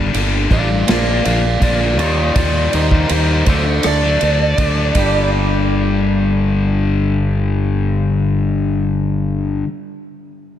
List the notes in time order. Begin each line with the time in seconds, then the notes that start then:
Already playing: G2 D3 G3 A#3 D4
0.12 G1 G2 D3 G3 A#3 D4, ride
0.50 A1 G2 D3 G3 A#3 D4 D5 F5, kick, ride
0.70 muted distorted electric guitar stroke
0.87 A#1 A#2 D3 F3 A#3 D4 D5, snare, ride
0.91 F5
1.06 F3 A#3 D4
1.24 A#1 A#2 D3 F3 A#3 D4 D5 F5, ride
1.43 muted distorted electric guitar stroke
1.60 A#1 A#2 D3 F3 A#3 D4 F4 D5, kick, ride
1.79 F3 A#3 D4
1.98 D#2 D#3 G3 A#3 D#4 F4 D5, ride
2.17 G3 A#3 D#4
2.34 D#2 D#3 G3 A#3 D#4 F4 D5, kick, ride
2.73 D#2 D#3 A#3 D#4 C5, ride
2.91 G3 A#3 D#4, kick
3.09 D#2 D#3 G3 A#3 D#4 C5, ride
3.13 D#3
3.46 D2 D3 F#3 A3 D4 A4 C5, kick, ride
3.66 muted distorted electric guitar stroke
3.83 D2 D3 A3 D4 D5, cross-stick, ride
4.02 F#3 A3 D4
4.20 D2 D3 F#3 A3 D4, ride
4.40 muted distorted electric guitar stroke
4.58 D2 D3 F#3 A3 D4, kick, ride
4.75 F#3 A3 D4
4.94 G1 G2 D3, kick, ride
4.98 G3 A#3 D4 G4